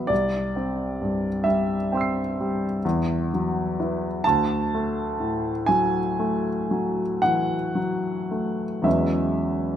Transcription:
Already playing: E3 F#3 B3 E5
0.07 C2 D5
0.56 C4
1.02 G2
1.44 G3 E5
1.92 C4 G5 C6
1.97 E6 C7
2.40 G3
2.85 E2
3.34 F#3
3.80 E4 B4
4.24 D2 A5
4.74 A3
5.20 A2
5.66 F#3 G#5
6.19 A3
6.71 F#3
7.22 E3 F#5
7.75 F#3
8.31 A3
8.82 E2 F#3 G#3 C#4 B4 E5

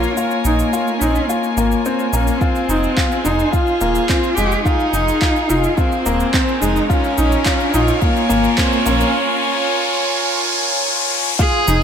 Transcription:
Already playing: F4 A#4 C#5 G#5
0.03 shaker
0.15 A#3 F4, shaker
0.31 shaker
0.45 A#1 D#4, shaker
0.59 shaker
0.73 F4, shaker
0.88 shaker
0.98 A#1 C#4 D#4, shaker
1.15 shaker
1.26 A#3 F4, shaker
1.43 shaker
1.57 G#1 A#3, shaker
1.72 shaker
1.85 C4, shaker
1.99 shaker
2.12 A#1 A#3 C#4, shaker
2.27 shaker
2.39 C4 F4 G#4 C5, kick, riser, shaker
2.55 shaker
2.69 F1 D#4, shaker
2.84 shaker
2.97 F4, kick, clap, shaker
3.12 shaker
3.23 F1 D#4, shaker
3.39 shaker
3.52 F4, kick, shaker
3.67 shaker
3.81 D#1 A#3, shaker
3.95 shaker
4.09 C4, kick, clap, shaker
4.24 shaker
4.34 F1 G#3 G4, shaker
4.52 shaker
4.63 D#4 F4 A#4, kick, shaker
4.80 shaker
4.93 F1 D#4, shaker
5.08 shaker
5.21 F4, kick, clap, shaker
5.36 shaker
5.49 F1 D#4 F4, shaker
5.64 shaker
5.77 C4 F4, kick, shaker
5.92 shaker
6.06 D#1 A#3, shaker
6.20 shaker
6.34 C4, kick, clap, shaker
6.48 shaker
6.60 F1 G#3 D#4, shaker
6.76 shaker
6.89 C#4 F4 C#5 G#5, kick, shaker
7.04 shaker
7.18 A#1 D#4, shaker
7.32 shaker
7.46 F4, kick, clap, shaker
7.60 shaker
7.74 A#1 D#4 F4, shaker
7.88 shaker
8.02 A#3 F4, kick, shaker
8.16 shaker
8.29 G#1 A#3, shaker
8.44 shaker
8.58 C4, kick, clap, shaker
8.72 shaker
8.86 A#1 A#3 C#4, shaker
9.00 shaker
11.39 F4 G#4 C5 G#5, kick, shaker
11.67 F1 D#4, shaker

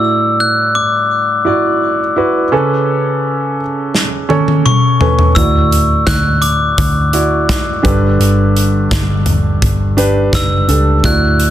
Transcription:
Already playing: A2 E4 F#4 D5 E6
0.40 F#6
0.75 D6
1.45 E4 F#4 D5
2.16 E4 F#4 B4
2.52 C#3 C#4 A4 B4
3.95 snare
4.29 C#4 A4 C#5, high tom
4.48 high tom
4.66 C#6, mid tom
5.00 C#4 A4 B4, floor tom
5.19 floor tom
5.35 D2 A2 E4 F#4 D5 E6, kick, closed hi-hat
5.72 closed hi-hat
6.07 D2 F#6, kick, snare, closed hi-hat
6.42 D6, closed hi-hat
6.78 D2, kick, closed hi-hat
7.13 E4 F#4 D5, closed hi-hat
7.49 kick, snare, closed hi-hat
7.83 G1 G2 D3 D4 G4 B4, kick, closed hi-hat
8.20 G1, closed hi-hat
8.57 closed hi-hat
8.91 G1, kick, snare, closed hi-hat
9.26 closed hi-hat, floor tom
9.62 G1, kick, closed hi-hat
9.97 D4 G4 B4, closed hi-hat
10.33 F#1 E6, kick, snare, closed hi-hat
10.68 C#2 D4 G4 A4, closed hi-hat
11.04 D2 A2 E4 F#4 D5 F#6, kick, closed hi-hat
11.40 closed hi-hat

